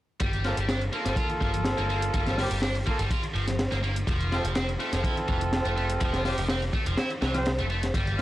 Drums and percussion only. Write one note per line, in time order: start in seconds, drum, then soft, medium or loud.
0.20 kick loud
0.20 closed hi-hat medium
0.20 ride medium
0.33 closed hi-hat soft
0.44 snare soft
0.44 ride medium
0.57 closed hi-hat medium
0.69 snare loud
0.69 closed hi-hat medium
0.69 ride medium
0.81 closed hi-hat soft
0.93 ride medium
1.05 snare soft
1.05 closed hi-hat medium
1.16 kick loud
1.16 closed hi-hat medium
1.16 ride medium
1.30 closed hi-hat soft
1.41 kick medium
1.41 ride medium
1.54 closed hi-hat medium
1.65 snare loud
1.65 closed hi-hat medium
1.65 ride medium
1.78 closed hi-hat soft
1.90 ride medium
2.02 closed hi-hat medium
2.14 kick loud
2.14 closed hi-hat soft
2.14 ride medium
2.27 snare soft
2.27 closed hi-hat soft
2.38 snare medium
2.38 open hi-hat medium
2.51 closed hi-hat medium
2.51 ride soft
2.62 snare loud
2.62 closed hi-hat medium
2.62 ride medium
2.75 closed hi-hat soft
2.86 kick medium
2.86 ride medium
2.99 closed hi-hat medium
2.99 ride soft
3.11 kick loud
3.11 closed hi-hat medium
3.11 ride medium
3.23 closed hi-hat soft
3.36 ride medium
3.48 snare soft
3.48 closed hi-hat medium
3.59 snare loud
3.59 closed hi-hat soft
3.59 ride medium
3.72 snare soft
3.72 closed hi-hat soft
3.84 ride medium
3.96 closed hi-hat medium
4.07 kick loud
4.07 closed hi-hat soft
4.07 ride medium
4.21 closed hi-hat soft
4.32 snare soft
4.32 ride medium
4.45 closed hi-hat medium
4.55 snare loud
4.55 closed hi-hat soft
4.55 ride medium
4.69 closed hi-hat soft
4.80 ride medium
4.93 snare soft
4.93 closed hi-hat medium
5.04 kick loud
5.04 closed hi-hat medium
5.04 ride medium
5.17 closed hi-hat soft
5.28 kick medium
5.28 ride medium
5.41 closed hi-hat medium
5.53 snare loud
5.53 closed hi-hat medium
5.53 ride medium
5.65 closed hi-hat soft
5.77 ride medium
5.90 closed hi-hat medium
6.00 kick loud
6.00 closed hi-hat soft
6.00 ride medium
6.14 snare soft
6.14 closed hi-hat soft
6.25 snare soft
6.25 open hi-hat medium
6.38 closed hi-hat medium
6.38 ride soft
6.49 snare loud
6.49 closed hi-hat soft
6.49 ride medium
6.62 closed hi-hat soft
6.73 kick loud
6.73 ride medium
6.86 closed hi-hat medium
6.86 ride soft
6.98 snare loud
6.98 closed hi-hat soft
6.98 ride medium
7.10 closed hi-hat soft
7.22 snare loud
7.22 ride medium
7.35 snare soft
7.35 closed hi-hat medium
7.45 snare loud
7.45 closed hi-hat soft
7.45 ride medium
7.59 closed hi-hat soft
7.70 ride medium
7.83 snare soft
7.83 closed hi-hat medium
7.94 kick loud
7.94 closed hi-hat soft
7.94 ride medium
8.07 closed hi-hat soft
8.19 snare soft